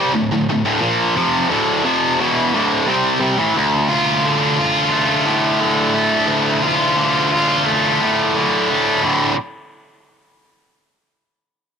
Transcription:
0.00 0.14 C3 medium
0.00 0.14 G3 medium
0.15 0.31 D2 medium
0.15 0.31 A2 medium
0.32 0.48 D2 medium
0.32 0.50 A2 medium
0.50 0.64 D2 medium
0.50 0.64 A2 medium
0.65 0.80 D2 loud
0.65 0.81 A2 loud
0.81 1.16 A#2 loud
0.81 1.16 F3 loud
0.81 1.16 A#3 loud
1.16 1.50 F2 medium
1.16 1.51 C3 medium
1.16 1.51 F3 loud
1.50 1.84 D2 loud
1.50 1.85 A2 loud
1.50 1.85 D3 loud
1.84 2.18 F2 medium
1.84 2.19 C3 loud
1.84 2.19 F3 loud
2.20 2.53 E2 medium
2.20 2.53 B2 medium
2.20 2.54 E3 medium
2.54 2.87 D2 medium
2.54 2.88 A2 medium
2.54 2.88 D3 loud
2.87 3.19 C3 medium
2.87 3.19 G3 medium
2.87 3.22 C4 loud
3.20 3.37 C3 medium
3.20 3.38 G3 loud
3.38 3.55 A2 medium
3.38 3.56 E3 medium
3.56 6.27 D2 medium
3.89 4.58 F4 medium
4.25 5.60 D3 medium
4.58 6.62 F4 medium
4.91 5.93 A3 medium
5.26 6.98 A2 medium
5.61 6.96 D3 medium
5.94 7.65 A3 medium
6.27 8.00 D2 medium
6.63 7.31 F4 medium
6.97 8.34 D3 medium
7.32 9.04 F4 medium
7.66 8.69 A3 medium
8.01 9.02 A2 medium
8.35 9.03 D3 medium
8.70 9.04 A3 medium
9.03 9.31 D2 medium
9.03 9.31 A2 medium
9.03 9.31 D3 medium

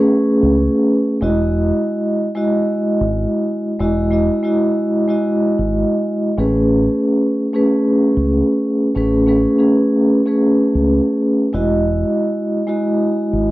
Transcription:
0.00 1.13 A3 loud
0.00 1.13 C#4 medium
0.00 1.13 G#4 medium
0.00 1.14 B4 loud
0.43 0.67 C#2 medium
1.21 1.70 E1 loud
1.21 2.26 G#3 medium
1.21 2.26 E4 medium
1.21 2.27 F#4 medium
1.21 2.27 D#5 loud
2.35 3.69 G#3 medium
2.35 3.69 E4 medium
2.35 3.69 F#4 medium
2.35 3.70 D#5 loud
3.01 3.25 G#1 medium
3.80 4.28 E1 loud
3.80 4.10 G#3 medium
3.80 4.10 E4 medium
3.80 4.10 F#4 medium
3.80 4.11 D#5 medium
4.11 4.41 G#3 medium
4.11 4.42 E4 medium
4.11 4.42 F#4 medium
4.11 4.43 D#5 loud
4.43 5.03 G#3 medium
4.43 5.04 E4 medium
4.43 5.04 F#4 medium
4.43 5.05 D#5 loud
5.08 6.28 G#3 loud
5.08 6.28 E4 medium
5.08 6.29 F#4 medium
5.08 6.29 D#5 loud
5.59 5.83 G#1 medium
6.37 6.86 A1 loud
6.37 7.42 A3 medium
6.37 7.42 C#4 medium
6.37 7.43 G#4 medium
6.37 7.43 B4 loud
7.53 8.86 A3 medium
7.53 8.86 C#4 medium
7.53 8.87 G#4 medium
7.53 8.87 B4 loud
8.17 8.41 C#2 medium
8.95 9.45 A1 loud
8.95 9.25 A3 medium
8.95 9.26 C#4 medium
8.95 9.26 G#4 medium
8.95 9.26 B4 loud
9.26 9.57 A3 medium
9.26 9.58 C#4 medium
9.26 9.58 G#4 medium
9.26 9.58 B4 loud
9.58 10.19 A3 medium
9.58 10.19 C#4 medium
9.58 10.20 G#4 medium
9.58 10.20 B4 loud
10.26 11.45 A3 medium
10.26 11.45 C#4 medium
10.26 11.46 G#4 medium
10.26 11.46 B4 loud
10.75 10.99 C#2 medium
11.53 12.03 E1 loud
11.53 12.58 G#3 medium
11.53 12.58 E4 medium
11.53 12.59 F#4 medium
11.53 12.59 D#5 loud
12.67 13.51 G#3 medium
12.67 13.51 E4 medium
12.67 13.51 F#4 medium
12.67 13.51 D#5 loud
13.33 13.51 G#1 medium

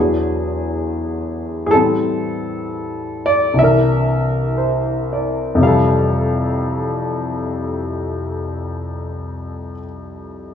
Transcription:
0.00 1.71 E2 soft
0.00 1.68 E3 soft
0.00 1.71 F#3 soft
0.00 1.72 D4 soft
0.00 1.65 G#4 soft
1.66 3.55 A2 soft
1.66 3.56 E3 soft
1.66 1.71 G#4 medium
1.71 3.58 G3 soft
1.71 1.76 A4 medium
1.75 3.59 C4 soft
1.75 3.60 A4 soft
3.26 3.58 D5 medium
3.54 5.58 C2 soft
3.54 5.56 C3 soft
3.59 5.60 E3 soft
3.59 5.62 D4 soft
3.59 5.24 E5 medium
3.64 5.63 A#4 medium
4.58 5.40 C5 soft
5.13 5.86 D5 soft
5.55 9.71 F2 medium
5.55 9.73 C3 soft
5.61 9.80 E3 soft
5.61 9.77 G3 soft
5.61 9.74 F5 medium
5.67 9.83 A4 medium

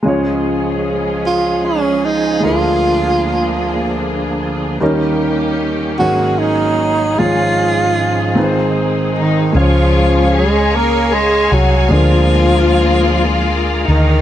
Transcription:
0.03 2.39 C#2 soft
0.03 2.39 C#3 soft
0.03 2.40 F3 soft
0.03 2.38 G#3 soft
0.03 2.40 G#3 soft
0.03 2.39 C#4 soft
0.03 2.40 C#4 soft
0.03 4.76 F4 soft
0.03 2.39 F4 soft
0.03 4.76 G#4 soft
0.03 4.76 G#4 medium
0.08 2.41 C#5 medium
1.26 1.67 F4 medium
1.65 2.06 C#4 medium
2.05 2.45 D#4 medium
2.40 4.77 D2 soft
2.40 4.77 D3 soft
2.40 4.78 D3 soft
2.40 4.75 G#3 soft
2.40 4.79 A#3 soft
2.40 4.76 D4 soft
2.40 4.78 D4 soft
2.40 4.02 F4 medium
2.40 4.77 F4 soft
2.44 4.79 D2 soft
2.44 4.79 F3 soft
2.44 7.15 A#3 soft
2.44 4.79 D4 soft
2.44 4.78 A#4 soft
4.80 5.96 D#2 medium
4.80 5.98 D#3 soft
4.80 5.96 D#3 medium
4.80 5.99 G3 soft
4.80 7.16 A#3 medium
4.80 7.16 C#4 soft
4.80 7.15 C#4 soft
4.80 5.99 C#4 soft
4.80 5.98 D#4 soft
4.80 6.00 D#4 soft
4.80 5.98 G4 soft
4.80 5.99 G4 medium
4.80 6.00 A#4 medium
5.99 7.15 G#1 soft
5.99 7.15 G#2 soft
5.99 7.17 F#3 soft
5.99 7.17 G#3 soft
5.99 7.18 C#4 soft
5.99 6.40 F#4 medium
5.99 7.17 F#4 soft
5.99 7.19 F#4 soft
5.99 9.52 G#4 medium
5.99 8.35 G#4 soft
5.99 7.19 A#4 soft
6.39 7.21 D#4 medium
7.16 8.33 G#1 soft
7.16 8.35 G#2 soft
7.16 8.33 G#2 soft
7.16 8.36 F3 soft
7.16 9.52 G#3 medium
7.16 9.52 G#3 soft
7.16 8.34 G#3 soft
7.16 8.35 C#4 soft
7.16 8.37 C#4 soft
7.16 8.35 F4 soft
7.16 8.77 F4 medium
7.16 8.37 F4 soft
7.21 8.38 C#5 soft
8.35 9.51 G#1 soft
8.35 9.51 G#2 medium
8.35 9.55 D#3 soft
8.35 9.51 G#3 medium
8.35 9.54 C4 medium
8.35 9.54 C4 soft
8.35 9.55 C4 soft
8.35 9.54 D#4 soft
8.35 9.55 D#4 soft
8.35 9.55 G#4 medium
8.35 8.43 B4 soft
8.44 9.59 C5 medium
9.16 9.59 D#3 medium
9.16 9.52 D#4 medium
9.53 11.48 C#2 medium
9.53 10.69 C#3 soft
9.53 11.86 G#3 soft
9.53 11.87 C#4 soft
9.53 11.89 G#4 medium
9.53 14.21 G#4 soft
9.53 11.89 C#5 soft
9.53 14.21 F5 soft
9.53 11.88 F5 soft
9.53 14.21 F5 soft
9.53 14.21 G#5 medium
9.57 10.38 F3 medium
9.57 10.70 G#3 medium
9.57 10.71 C#4 medium
9.57 10.31 F4 medium
9.57 11.89 C#5 medium
9.57 11.90 C#6 medium
10.34 10.77 G#3 medium
10.34 10.73 G#4 medium
10.72 11.15 A#3 medium
10.72 11.12 A#4 medium
11.12 11.55 G#3 medium
11.12 11.51 G#4 medium
11.52 11.88 C2 medium
11.52 11.92 F#3 medium
11.52 11.91 F#4 medium
11.89 13.84 D2 medium
11.89 13.05 D3 soft
11.89 13.57 F3 medium
11.89 14.21 G#3 soft
11.89 13.88 F4 medium
11.89 14.21 F4 soft
11.89 14.21 A#4 medium
11.89 14.21 D5 soft
11.89 14.21 D5 medium
11.89 14.21 A#5 medium
11.93 13.84 G#3 medium
11.93 13.84 A#3 medium
11.93 14.21 A#4 medium
11.93 14.21 D5 soft
13.86 14.21 D2 medium
13.86 14.21 D#3 medium
13.86 14.21 D#4 medium

